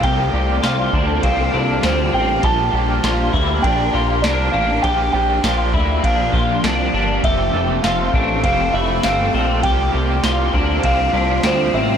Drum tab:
RD |x-x-x-x-|x-x-x-x-|x-x-x-x-|x-x-x-x-|
TB |--x---x-|--x---x-|--x---x-|--x---x-|
SD |--o---o-|--o---o-|--o---o-|--o---o-|
BD |o--oo---|o--oo---|o--ooo--|o--oo---|

RD |x-x-x-x-|
TB |--x---x-|
SD |--o---o-|
BD |o--oo---|